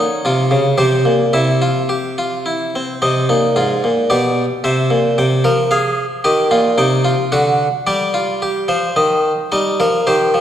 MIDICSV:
0, 0, Header, 1, 2, 480
1, 0, Start_track
1, 0, Tempo, 551471
1, 1165, Time_signature, 3, 2, 24, 8
1, 2624, Tempo, 539084
1, 6464, Tempo, 548446
1, 9159, End_track
2, 0, Start_track
2, 0, Title_t, "Harpsichord"
2, 0, Program_c, 0, 6
2, 0, Note_on_c, 0, 63, 81
2, 0, Note_on_c, 0, 73, 63
2, 208, Note_off_c, 0, 63, 0
2, 218, Note_on_c, 0, 48, 64
2, 223, Note_on_c, 0, 65, 77
2, 443, Note_off_c, 0, 48, 0
2, 445, Note_on_c, 0, 49, 63
2, 511, Note_off_c, 0, 65, 0
2, 658, Note_off_c, 0, 73, 0
2, 676, Note_off_c, 0, 49, 0
2, 676, Note_on_c, 0, 67, 72
2, 677, Note_on_c, 0, 48, 62
2, 677, Note_on_c, 0, 72, 59
2, 912, Note_off_c, 0, 48, 0
2, 916, Note_on_c, 0, 46, 53
2, 977, Note_off_c, 0, 67, 0
2, 977, Note_off_c, 0, 72, 0
2, 1154, Note_off_c, 0, 46, 0
2, 1160, Note_on_c, 0, 48, 48
2, 1160, Note_on_c, 0, 64, 51
2, 1163, Note_on_c, 0, 76, 48
2, 1398, Note_off_c, 0, 64, 0
2, 1407, Note_on_c, 0, 65, 54
2, 1644, Note_off_c, 0, 65, 0
2, 1647, Note_on_c, 0, 67, 49
2, 1885, Note_off_c, 0, 67, 0
2, 1899, Note_on_c, 0, 65, 48
2, 2134, Note_off_c, 0, 65, 0
2, 2139, Note_on_c, 0, 64, 47
2, 2346, Note_off_c, 0, 48, 0
2, 2347, Note_off_c, 0, 76, 0
2, 2376, Note_off_c, 0, 64, 0
2, 2398, Note_on_c, 0, 60, 47
2, 2620, Note_off_c, 0, 60, 0
2, 2629, Note_on_c, 0, 48, 49
2, 2629, Note_on_c, 0, 75, 57
2, 2630, Note_on_c, 0, 60, 47
2, 2862, Note_off_c, 0, 48, 0
2, 2863, Note_off_c, 0, 60, 0
2, 2872, Note_on_c, 0, 46, 60
2, 2872, Note_on_c, 0, 63, 69
2, 3104, Note_off_c, 0, 46, 0
2, 3104, Note_off_c, 0, 63, 0
2, 3110, Note_on_c, 0, 44, 55
2, 3111, Note_on_c, 0, 65, 60
2, 3343, Note_off_c, 0, 44, 0
2, 3359, Note_on_c, 0, 46, 53
2, 3409, Note_off_c, 0, 65, 0
2, 3562, Note_off_c, 0, 75, 0
2, 3587, Note_off_c, 0, 46, 0
2, 3589, Note_on_c, 0, 74, 58
2, 3591, Note_on_c, 0, 47, 55
2, 3592, Note_on_c, 0, 67, 69
2, 3887, Note_off_c, 0, 74, 0
2, 3888, Note_off_c, 0, 47, 0
2, 3889, Note_off_c, 0, 67, 0
2, 4071, Note_on_c, 0, 76, 54
2, 4072, Note_on_c, 0, 48, 55
2, 4074, Note_on_c, 0, 72, 67
2, 4303, Note_off_c, 0, 48, 0
2, 4306, Note_on_c, 0, 46, 59
2, 4367, Note_off_c, 0, 76, 0
2, 4539, Note_off_c, 0, 46, 0
2, 4554, Note_on_c, 0, 48, 56
2, 4555, Note_on_c, 0, 79, 58
2, 4765, Note_off_c, 0, 72, 0
2, 4780, Note_off_c, 0, 48, 0
2, 4787, Note_on_c, 0, 53, 60
2, 4787, Note_on_c, 0, 70, 67
2, 4846, Note_off_c, 0, 79, 0
2, 5014, Note_off_c, 0, 70, 0
2, 5023, Note_on_c, 0, 77, 62
2, 5027, Note_on_c, 0, 68, 74
2, 5319, Note_off_c, 0, 77, 0
2, 5322, Note_off_c, 0, 68, 0
2, 5480, Note_off_c, 0, 53, 0
2, 5499, Note_on_c, 0, 67, 65
2, 5500, Note_on_c, 0, 75, 61
2, 5502, Note_on_c, 0, 51, 53
2, 5733, Note_off_c, 0, 67, 0
2, 5734, Note_off_c, 0, 51, 0
2, 5737, Note_on_c, 0, 46, 80
2, 5738, Note_on_c, 0, 65, 64
2, 5799, Note_off_c, 0, 75, 0
2, 5973, Note_off_c, 0, 46, 0
2, 5973, Note_off_c, 0, 65, 0
2, 5974, Note_on_c, 0, 48, 79
2, 5976, Note_on_c, 0, 63, 66
2, 5978, Note_on_c, 0, 79, 69
2, 6212, Note_on_c, 0, 65, 67
2, 6213, Note_off_c, 0, 63, 0
2, 6277, Note_off_c, 0, 48, 0
2, 6279, Note_off_c, 0, 79, 0
2, 6453, Note_off_c, 0, 65, 0
2, 6458, Note_on_c, 0, 78, 73
2, 6459, Note_on_c, 0, 50, 83
2, 6460, Note_on_c, 0, 66, 69
2, 6757, Note_off_c, 0, 78, 0
2, 6758, Note_off_c, 0, 50, 0
2, 6758, Note_off_c, 0, 66, 0
2, 6936, Note_on_c, 0, 55, 79
2, 6936, Note_on_c, 0, 74, 65
2, 6937, Note_on_c, 0, 67, 67
2, 7173, Note_off_c, 0, 67, 0
2, 7175, Note_on_c, 0, 65, 70
2, 7413, Note_off_c, 0, 65, 0
2, 7422, Note_on_c, 0, 67, 66
2, 7639, Note_off_c, 0, 55, 0
2, 7651, Note_on_c, 0, 53, 78
2, 7652, Note_on_c, 0, 72, 70
2, 7656, Note_off_c, 0, 67, 0
2, 7871, Note_off_c, 0, 74, 0
2, 7890, Note_off_c, 0, 53, 0
2, 7895, Note_on_c, 0, 51, 77
2, 7895, Note_on_c, 0, 75, 63
2, 8196, Note_off_c, 0, 75, 0
2, 8197, Note_off_c, 0, 51, 0
2, 8358, Note_off_c, 0, 72, 0
2, 8381, Note_on_c, 0, 75, 61
2, 8382, Note_on_c, 0, 63, 64
2, 8384, Note_on_c, 0, 55, 69
2, 8618, Note_off_c, 0, 75, 0
2, 8619, Note_off_c, 0, 55, 0
2, 8626, Note_on_c, 0, 53, 75
2, 8627, Note_on_c, 0, 70, 83
2, 8682, Note_off_c, 0, 63, 0
2, 8860, Note_off_c, 0, 53, 0
2, 8860, Note_off_c, 0, 70, 0
2, 8862, Note_on_c, 0, 72, 78
2, 8864, Note_on_c, 0, 67, 70
2, 8865, Note_on_c, 0, 51, 72
2, 9098, Note_off_c, 0, 51, 0
2, 9101, Note_on_c, 0, 53, 67
2, 9159, Note_off_c, 0, 53, 0
2, 9159, Note_off_c, 0, 67, 0
2, 9159, Note_off_c, 0, 72, 0
2, 9159, End_track
0, 0, End_of_file